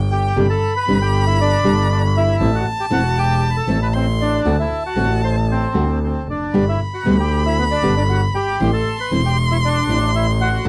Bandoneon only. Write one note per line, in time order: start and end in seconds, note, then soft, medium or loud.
0.11 0.47 G4 medium
0.11 0.47 G5 loud
0.50 0.74 A4 medium
0.50 0.73 A5 medium
0.76 0.99 B4 medium
0.76 0.99 B5 loud
1.02 1.25 G4 medium
1.02 1.25 G5 medium
1.27 1.39 E4 medium
1.27 1.39 E5 medium
1.41 1.87 D4 medium
1.41 1.90 D5 loud
1.91 2.03 D4 medium
1.91 2.02 D5 medium
2.17 2.52 E4 medium
2.17 2.55 E5 loud
2.55 2.66 F#4 medium
2.55 2.66 F#5 loud
2.80 2.86 G4 medium
2.80 2.85 G5 loud
2.93 3.16 F#4 medium
2.93 3.18 F#5 loud
3.18 3.48 G4 medium
3.18 3.50 G5 loud
3.50 3.56 B5 medium
3.56 3.80 A4 medium
3.56 3.82 A5 loud
3.82 3.88 B4 medium
3.82 3.88 B5 medium
3.95 4.07 C4 medium
3.95 4.06 C5 medium
4.21 4.57 D4 medium
4.21 4.56 D5 loud
4.60 4.83 E4 medium
4.60 4.83 E5 medium
4.86 5.21 F#4 medium
4.86 5.21 F#5 medium
5.24 5.36 C5 medium
5.24 5.35 C6 medium
5.51 5.99 C4 medium
5.51 5.99 C5 medium
6.04 6.28 C4 medium
6.04 6.27 C5 medium
6.30 6.65 D4 medium
6.30 6.65 D5 medium
6.69 6.80 E4 medium
6.69 6.80 E5 medium
6.94 7.18 F#4 medium
6.94 7.17 F#5 medium
7.20 7.43 G4 medium
7.20 7.43 G5 medium
7.46 7.57 E4 medium
7.46 7.57 E5 medium
7.59 7.65 B3 medium
7.59 7.64 B4 medium
7.71 7.95 D4 medium
7.71 7.95 D5 medium
7.97 8.03 D4 medium
7.97 8.02 D5 medium
8.10 8.21 F#4 medium
8.10 8.21 F#5 medium
8.35 8.71 G4 medium
8.35 8.70 G5 loud
8.73 8.97 A4 medium
8.73 8.99 A5 medium
9.00 9.11 B4 medium
9.00 9.11 B5 medium
9.26 9.37 G4 medium
9.26 9.37 G5 medium
9.51 9.57 E4 medium
9.51 9.57 E5 medium
9.65 10.11 D4 medium
9.65 10.11 D5 loud
10.16 10.27 E4 medium
10.16 10.27 E5 medium
10.41 10.69 F#4 medium
10.41 10.69 F#5 loud